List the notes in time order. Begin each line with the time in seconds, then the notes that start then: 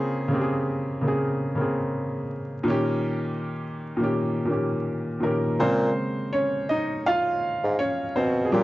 Already playing: C#3 A#3 C4 F4 G#4
0.28 C#3 A#3
0.32 C4 G4
0.41 G#4
1.01 C#3 A#3
1.06 C4 G#4
1.55 C#3 A#3
1.59 C4 G#4
2.63 A#2 D#3 A#3
2.68 C#4 G4
3.97 A#2 D#3 A#3
4.02 C#4 G4
4.45 A#2 D#3 A#3
4.50 C#4 G4
5.20 A#2 D#3 A#3 A#4
5.25 C#4 G4
5.60 A#2 C#3 G#3 A#3 C4 C5
6.33 C#4 C#5
6.69 D#4 D#5
7.06 F4 F5
7.64 G#2
7.79 C#4 C#5
8.16 B2 C4 C5
8.45 G#4
8.51 A#2 F3 G3 C#4 G4